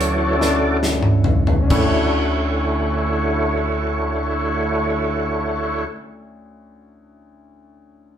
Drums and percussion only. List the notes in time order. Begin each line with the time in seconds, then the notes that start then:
0.01 closed hi-hat
0.41 snare
0.83 snare
1.03 mid tom
1.24 floor tom
1.47 floor tom
1.70 kick, crash